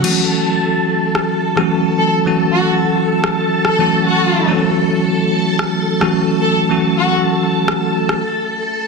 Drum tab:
CC |x---------------|----------------|----------------|----------------|
SD |--------r--r----|-------r--r-----|--------r--r----|-------r--r-----|